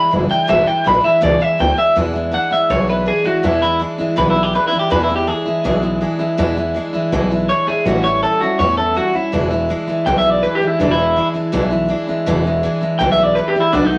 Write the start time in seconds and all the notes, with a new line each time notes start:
Already playing: G#3 D4 E4 B5
0.11 F#1 E3 G#3 D4 E4
0.29 E3 G#3 D4 E4 G5, muted upright bass stroke
0.47 G#1 E2 B2 E3 G#3 D4 E4 E5
0.67 E3 G#3 D4 E4 G5, muted upright bass stroke
0.84 A1 E3 G#3 D4 E4 B5
1.03 E3 G#3 D4 E4 E5, muted upright bass stroke
1.21 C#2 E2 B2 E3 G#3 D4 E4 D5
1.39 E3 G#3 D4 E4 E5
1.58 D2 E3 G#3 D4 E4 G5
1.77 E3 G#3 D4 E4 E5, muted upright bass stroke
1.95 E2 B2 E3 G#3 D4 E4
2.14 E3 G#3 D4 E4
2.31 E3 G#3 D4 E4 F#5
2.50 E3 G#3 D4 E4 E5, muted upright bass stroke
2.70 B1 E2 B2 E3 G#3 D4 E4 C#5
2.87 E3 G#3 D4 E4 B4
3.06 E3 G#3 D4 E4 G#4
3.24 E3 G#3 D4 E4 F#4, muted upright bass stroke
3.43 E2 B2 E3 G#3 D4 E4
3.62 E3 G#3 D4 E4
3.79 E3 G#3 D4 E4
3.98 E3 G#3 D4 E4, muted upright bass stroke
4.16 B1 E2 B2 E3 G#3 D4 E4 B4
4.30 E4
4.35 E3 G#3 D4 E4
4.43 G4
4.53 E3 G#3 D4 E4 B4
4.67 E4
4.72 E3 G#3 D4 E4, muted upright bass stroke
4.79 G4
4.90 E2 B2 E3 G#3 D4 E4 B4
5.04 E4
5.08 E3 G#3 D4 E4
5.16 G4
5.27 E3 G#3 D4 E4 G#4
5.46 E3 G#3 D4 E4, muted upright bass stroke
5.64 B1 E2 B2 E3 G#3 D4 E4
5.82 E3 G#3 D4 E4
6.01 E3 G#3 D4 E4
6.19 E3 G#3 D4 E4, muted upright bass stroke
6.37 E2 B2 E3 G#3 D4 E4
6.57 E3 G#3 D4 E4
6.74 E3 G#3 D4 E4
6.93 E3 G#3 D4 E4, muted upright bass stroke
7.12 B1 E2 B2 E3 G#3 D4 E4
7.30 E3 G#3 D4 E4
7.49 E3 G#3 D4 E4 C#5
7.67 E3 G#3 D4 E4 G#4, muted upright bass stroke
7.85 A1 A2 E3 G3 C#4 E4 F#4
8.04 G3 C#4 E4 C#5
8.22 E3 G3 C#4 E4 A4
8.40 G3 C#4 E4 F#4, muted upright bass stroke
8.59 E2 A2 E3 G3 C#4 E4 C#5
8.77 G3 C#4 E4 A4
8.95 E3 G3 C#4 E4 F#4
9.13 G3 C#4 E4, muted upright bass stroke
9.32 E1 E2 B2 E3 G#3 D4 E4
9.50 E3 G#3 D4 E4
9.69 E3 G#3 D4 E4
9.87 E3 G#3 D4 E4, muted upright bass stroke
10.06 B1 E2 B2 E3 G#3 D4 E4 G5
10.18 E5
10.24 E3 G#3 D4 E4
10.30 D5
10.42 E3 G#3 D4 E4 B4
10.55 G4
10.61 E3 G#3 D4 E4, muted upright bass stroke
10.67 E4
10.79 E1 E2 B2 E3 G#3 D4 E4
10.91 E4
10.98 E3 G#3 D4 E4
11.16 E3 G#3 D4 E4
11.34 E3 G#3 D4 E4, muted upright bass stroke
11.52 B1 E2 B2 E3 G#3 D4 E4
11.70 E3 G#3 D4 E4
11.88 E3 G#3 D4 E4
12.07 E3 G#3 D4 E4, muted upright bass stroke
12.26 E1 E2 B2 E3 G#3 D4 E4
12.45 E3 G#3 D4 E4
12.63 E3 G#3 D4 E4
12.81 E3 G#3 D4 E4, muted upright bass stroke
12.99 B1 E2 B2 E3 G#3 D4 E4 G5
13.12 E5
13.18 E3 G#3 D4 E4
13.23 D5
13.35 E3 G#3 D4 E4 B4
13.48 G4
13.55 E3 G#3 D4 E4, muted upright bass stroke
13.60 E4
13.73 B1 B2 D#3 A3 B3 D4 F#4
13.85 D#4
13.91 A3 B3 F#4